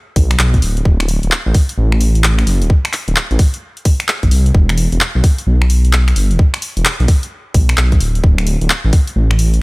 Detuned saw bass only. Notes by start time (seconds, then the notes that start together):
0.16 B1
0.39 B1
0.62 D1
0.85 D1
1.23 D1
1.46 A1
1.78 A1
2.47 F#1
2.62 D1
3.08 D1
3.31 A1
4.23 A1
4.32 C2
4.54 E1
4.92 E1
5.15 B1
5.47 B1
6.16 G1
6.31 E1
6.77 E1
7.00 B1
7.54 B1
7.78 B1
8.00 D1
8.24 D1
8.61 D1
8.85 A1
9.16 A1